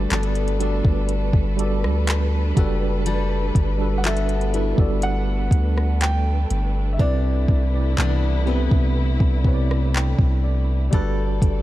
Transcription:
0.00 0.58 G3 medium
0.00 2.56 G3 medium
0.00 2.53 A3 medium
0.00 0.59 D4 medium
0.00 10.89 D4 medium
0.00 0.60 F#4 medium
0.00 0.12 A4 medium
0.00 0.61 A4 medium
0.00 6.95 A4 medium
0.00 2.58 B4 loud
0.00 6.95 B4 medium
0.00 0.36 D5 medium
0.00 1.05 D5 loud
0.11 0.82 G1 loud
0.11 3.10 B3 medium
0.11 0.60 D4 medium
0.11 3.06 A4 medium
0.11 clap loud
0.11 closed hi-hat medium
0.23 closed hi-hat soft
0.35 closed hi-hat soft
0.48 closed hi-hat soft
0.58 1.24 G3 medium
0.58 1.25 D4 medium
0.58 4.05 D4 medium
0.58 1.25 F#4 medium
0.58 1.26 A4 medium
0.58 closed hi-hat medium
0.63 1.27 D5 medium
0.85 1.32 G1 loud
0.85 kick loud
1.09 closed hi-hat medium
1.33 1.85 G1 loud
1.33 kick loud
1.57 2.54 G3 medium
1.57 2.55 D4 medium
1.57 2.56 F#4 medium
1.57 2.57 A4 medium
1.57 closed hi-hat medium
1.61 2.58 D5 medium
1.84 2.53 D2 loud
1.84 cross-stick medium
2.07 clap loud
2.07 closed hi-hat medium
2.55 3.51 F#1 loud
2.55 3.54 G3 medium
2.55 3.06 G3 medium
2.55 11.62 A3 medium
2.55 3.55 D4 medium
2.55 3.55 F#4 medium
2.55 3.56 A4 medium
2.55 kick loud
2.55 closed hi-hat medium
2.59 3.56 B4 loud
3.06 6.99 G3 medium
3.06 4.04 A4 medium
3.06 closed hi-hat medium
3.55 4.74 G1 loud
3.55 kick medium
3.55 closed hi-hat medium
3.78 4.28 G3 medium
3.78 4.28 D4 medium
3.78 4.29 F#4 medium
3.78 4.29 A4 medium
3.82 4.30 B4 medium
3.98 4.05 F#5 medium
4.04 7.54 B3 medium
4.04 4.53 F#4 medium
4.04 7.10 A4 medium
4.04 5.06 E5 medium
4.04 clap loud
4.04 closed hi-hat medium
4.17 closed hi-hat medium
4.29 closed hi-hat soft
4.41 closed hi-hat soft
4.52 4.69 G3 medium
4.52 4.69 D4 medium
4.52 4.76 E4 medium
4.52 4.70 F#4 medium
4.52 4.71 A4 medium
4.52 closed hi-hat medium
4.56 4.71 B4 medium
4.76 5.49 G1 loud
4.76 6.08 G3 medium
4.76 6.08 D4 medium
4.76 6.09 F#4 medium
4.76 6.09 A4 medium
4.76 kick loud
4.81 6.10 D5 medium
5.02 6.04 F#5 loud
5.02 closed hi-hat medium
5.51 6.46 D2 loud
5.51 kick medium
5.51 closed hi-hat medium
5.78 cross-stick medium
6.01 6.95 G5 loud
6.01 clap loud
6.01 closed hi-hat medium
6.50 6.98 G1 loud
6.50 closed hi-hat medium
6.93 7.00 E5 medium
6.98 7.47 C2 loud
6.98 7.47 C3 medium
6.98 10.89 C3 medium
6.98 10.93 C3 medium
6.98 7.48 C4 medium
6.98 7.98 D4 medium
6.98 10.89 E4 medium
6.98 7.48 E4 medium
6.98 10.89 B4 medium
6.98 7.49 B4 medium
6.98 8.43 D5 medium
6.98 kick loud
7.02 7.50 D5 loud
7.48 7.96 C2 loud
7.48 kick loud
7.71 8.21 C3 medium
7.71 8.22 C4 medium
7.71 8.22 E4 medium
7.71 8.23 B4 medium
7.76 8.23 D5 medium
7.98 8.69 C2 loud
7.98 10.92 E3 medium
7.98 8.46 B3 medium
7.98 11.49 D4 medium
7.98 clap loud
8.45 9.11 C3 medium
8.45 11.62 B3 medium
8.45 9.12 C4 medium
8.45 9.12 E4 medium
8.45 9.13 B4 medium
8.49 9.13 E5 loud
8.71 9.19 C2 loud
8.71 kick loud
9.20 10.15 C2 medium
9.20 kick loud
9.43 10.42 C3 medium
9.43 10.43 C4 medium
9.43 10.43 E4 medium
9.43 10.44 B4 medium
9.43 kick medium
9.48 9.53 C#5 medium
9.54 10.43 D5 loud
9.71 cross-stick medium
9.95 10.40 G5 medium
9.95 clap loud
10.19 10.90 C2 loud
10.19 kick loud
10.44 10.89 D5 medium
10.91 11.40 G1 loud
10.91 11.41 G3 loud
10.91 11.62 G3 medium
10.91 11.41 D4 loud
10.91 11.62 D4 medium
10.91 11.42 F#4 loud
10.91 11.62 A4 medium
10.91 11.42 A4 loud
10.91 11.62 D5 medium
10.91 kick loud
10.91 closed hi-hat medium
10.95 11.43 B4 loud
11.42 11.62 G1 loud
11.42 kick loud
11.42 closed hi-hat medium

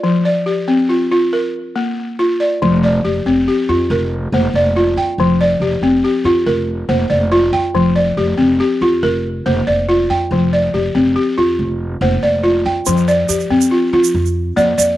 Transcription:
0.00 0.47 F3 medium
0.00 0.24 D5 medium
0.25 0.90 D5 medium
0.46 1.11 G4 medium
0.68 1.11 C4 medium
0.89 1.10 F4 medium
1.11 1.33 F4 medium
1.33 1.97 A#4 medium
1.76 2.19 A#3 medium
2.19 2.62 F4 medium
2.40 2.82 D5 medium
2.62 3.02 F1 medium
2.62 3.05 F3 medium
2.84 3.48 D5 medium
3.04 3.24 F1 medium
3.04 3.47 G4 medium
3.26 3.46 F1 medium
3.26 3.69 C4 medium
3.48 4.12 G4 medium
3.69 3.89 F2 medium
3.69 3.90 F4 medium
3.90 4.30 F1 medium
3.90 4.55 A#4 medium
4.32 4.52 F1 loud
4.32 4.76 A#3 medium
4.32 4.97 C5 medium
4.53 4.93 F1 medium
4.53 5.19 D5 medium
4.76 5.19 F4 medium
4.97 5.17 F2 medium
4.97 5.40 G5 medium
5.18 5.58 F1 medium
5.18 5.62 F3 medium
5.41 6.04 D5 medium
5.60 5.80 F1 medium
5.60 6.03 G4 medium
5.81 6.02 F1 medium
5.81 6.26 C4 medium
6.04 6.68 G4 medium
6.24 6.45 F2 medium
6.24 6.47 F4 medium
6.46 6.86 F1 medium
6.46 7.11 A#4 medium
6.89 7.09 F1 medium
6.89 7.32 A#3 medium
6.89 7.53 C5 medium
7.10 7.50 F1 medium
7.10 7.74 D5 medium
7.32 7.75 F4 medium
7.53 7.73 F2 medium
7.53 7.96 G5 medium
7.75 8.14 F1 medium
7.75 8.18 F3 medium
7.96 8.60 D5 medium
8.17 8.37 F1 medium
8.17 8.59 G4 medium
8.38 8.59 F1 medium
8.38 8.81 C4 medium
8.60 9.24 G4 medium
8.81 9.01 F2 medium
8.81 9.03 F4 medium
9.03 9.42 F1 medium
9.03 9.67 A#4 medium
9.46 9.66 F1 medium
9.46 9.89 A#3 medium
9.46 10.10 C5 medium
9.67 10.07 F1 medium
9.67 10.31 D5 medium
9.89 10.31 F4 medium
10.10 10.30 F2 medium
10.10 10.53 G5 medium
10.31 10.70 F1 medium
10.31 10.74 F3 medium
10.53 11.17 D5 medium
10.74 10.94 F1 medium
10.74 11.15 G4 medium
10.95 11.15 F1 medium
10.95 11.38 C4 medium
11.16 11.80 G4 medium
11.38 11.58 F2 medium
11.38 11.59 F4 medium
11.59 11.98 F1 medium
12.01 12.21 F1 loud
12.01 12.44 A#3 medium
12.01 12.66 C5 medium
12.23 12.63 F1 medium
12.23 12.87 D5 medium
12.43 12.86 F4 medium
12.65 12.85 F2 medium
12.65 13.08 G5 medium
12.86 13.26 F2 loud
12.86 13.29 F3 medium
12.86 shaker medium
12.97 shaker soft
13.08 13.72 D5 medium
13.08 shaker soft
13.29 13.49 F2 medium
13.29 13.93 G4 medium
13.29 shaker medium
13.40 shaker soft
13.50 13.70 F2 medium
13.50 13.93 C4 medium
13.61 shaker soft
13.71 13.92 F4 medium
13.93 14.13 F3 medium
13.93 14.14 F4 medium
14.04 shaker medium
14.14 14.54 F2 loud
14.26 shaker soft
14.56 14.77 F2 loud
14.56 14.97 A#3 medium
14.56 14.77 D5 medium
14.56 shaker soft
14.78 14.97 F2 medium
14.78 14.97 D5 medium
14.78 shaker medium

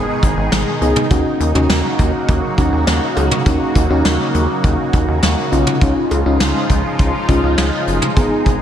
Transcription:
0.00 1.08 B2 medium
0.00 1.08 D#3 medium
0.00 1.07 G#3 medium
0.00 0.19 B3 medium
0.00 0.19 D#4 medium
0.00 5.78 D#4 medium
0.00 0.19 G#4 medium
0.00 1.08 G#4 medium
0.23 0.35 G#1 loud
0.23 kick medium
0.23 closed hi-hat medium
0.37 0.50 G#1 medium
0.52 0.64 G#1 loud
0.52 snare loud
0.52 closed hi-hat medium
0.81 0.94 C#2 medium
0.81 1.06 B3 medium
0.81 1.06 D#4 medium
0.81 1.06 G#4 medium
0.81 closed hi-hat medium
0.96 mid tom medium
1.11 1.23 D#2 loud
1.11 8.13 C#3 medium
1.11 5.77 F#3 medium
1.11 5.77 A#3 medium
1.11 1.48 C#4 medium
1.11 1.48 D#4 medium
1.11 5.77 F#4 medium
1.11 1.48 F#4 medium
1.11 kick loud
1.11 closed hi-hat medium
1.40 1.53 D#2 loud
1.40 closed hi-hat medium
1.55 1.67 D#2 loud
1.55 2.42 C#4 medium
1.55 2.42 D#4 medium
1.55 2.42 F#4 medium
1.55 mid tom medium
1.69 1.82 D#2 loud
1.69 snare loud
1.69 closed hi-hat medium
1.99 2.12 D#2 loud
1.99 kick medium
1.99 closed hi-hat medium
2.28 2.41 D#2 loud
2.28 kick loud
2.28 closed hi-hat medium
2.58 2.70 D#2 loud
2.58 3.32 C#4 medium
2.58 3.32 D#4 medium
2.58 3.32 F#4 medium
2.58 kick medium
2.58 closed hi-hat medium
2.72 2.85 D#2 loud
2.87 3.00 D#2 loud
2.87 snare loud
2.87 closed hi-hat medium
3.17 3.29 C#2 loud
3.17 closed hi-hat medium
3.17 cowbell medium
3.31 mid tom medium
3.46 3.59 D#2 loud
3.46 3.83 C#4 medium
3.46 3.83 D#4 medium
3.46 3.83 F#4 medium
3.46 kick loud
3.46 closed hi-hat medium
3.75 3.88 D#2 loud
3.75 kick medium
3.75 closed hi-hat medium
3.90 4.03 D#2 loud
3.90 4.90 C#4 medium
3.90 4.90 D#4 medium
3.90 4.90 F#4 loud
4.05 4.17 D#2 loud
4.05 snare loud
4.05 closed hi-hat medium
4.34 4.47 D#2 loud
4.34 closed hi-hat medium
4.64 4.76 D#2 loud
4.64 kick loud
4.64 closed hi-hat medium
4.93 5.06 D#2 medium
4.93 kick medium
4.93 closed hi-hat medium
5.08 5.20 D#2 medium
5.23 5.35 D#2 loud
5.23 snare loud
5.23 closed hi-hat medium
5.52 5.65 B1 loud
5.52 5.77 C#4 medium
5.52 5.77 D#4 medium
5.52 5.77 F4 medium
5.52 closed hi-hat medium
5.67 mid tom medium
5.81 5.94 C#2 loud
5.81 8.15 F3 medium
5.81 8.62 G#3 medium
5.81 6.19 C#4 medium
5.81 6.19 D#4 medium
5.81 8.62 D#4 medium
5.81 6.19 F4 medium
5.81 8.15 F4 medium
5.81 kick loud
5.81 closed hi-hat medium
6.11 6.23 C#2 loud
6.11 closed hi-hat medium
6.11 cowbell medium
6.26 6.38 C#2 loud
6.26 7.13 C#4 medium
6.26 7.13 D#4 medium
6.26 7.13 F4 medium
6.40 6.53 C#2 loud
6.40 snare loud
6.40 closed hi-hat medium
6.70 6.82 C#2 loud
6.70 kick medium
6.70 closed hi-hat medium
6.99 7.12 C#2 loud
6.99 kick loud
6.99 closed hi-hat medium
7.29 7.41 C#2 loud
7.29 8.03 C#4 medium
7.29 8.03 D#4 medium
7.29 8.03 F4 medium
7.29 kick medium
7.29 closed hi-hat medium
7.43 7.56 C#2 loud
7.58 7.70 C#2 loud
7.58 snare loud
7.58 closed hi-hat medium
7.87 8.00 F#1 medium
7.87 closed hi-hat medium
8.02 mid tom medium
8.16 8.29 G#1 loud
8.16 8.62 B2 medium
8.16 8.62 D#3 medium
8.16 8.54 B3 medium
8.16 8.54 D#4 medium
8.16 8.62 G#4 medium
8.16 8.54 G#4 medium
8.16 kick loud
8.16 closed hi-hat medium
8.46 8.59 G#1 loud
8.46 kick medium
8.46 closed hi-hat medium

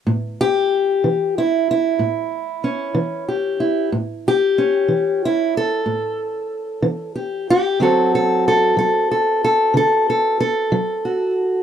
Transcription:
0.07 0.64 A2 medium
0.41 1.36 G4 loud
1.04 1.62 E3 medium
1.38 1.69 E4 medium
1.71 3.28 E4 medium
1.99 2.58 A2 medium
2.64 3.90 C#4 soft
2.95 3.54 E3 medium
3.28 3.90 G4 soft
3.60 3.89 E4 soft
3.92 4.51 A2 medium
4.28 5.24 G4 loud
4.58 7.78 C#4 soft
4.88 5.48 E3 medium
5.25 5.56 E4 medium
5.57 7.15 A4 medium
5.86 6.45 A2 medium
6.82 7.42 E3 medium
7.16 7.49 G4 soft
7.50 7.82 G4 loud
7.80 8.39 D3 medium
7.80 8.75 F#3 medium
7.80 11.63 C4 soft
7.80 11.04 F#4 soft
7.80 8.14 A4 medium
8.15 8.47 A4 medium
8.48 8.77 A4 loud
8.77 9.36 F#3 medium
8.77 9.10 A4 medium
9.11 9.43 A4 medium
9.44 9.76 A4 medium
9.74 10.33 D3 medium
9.74 10.08 A4 medium
10.10 10.39 A4 medium
10.40 11.63 A4 loud
10.72 11.30 F#3 medium
11.05 11.63 F#4 soft

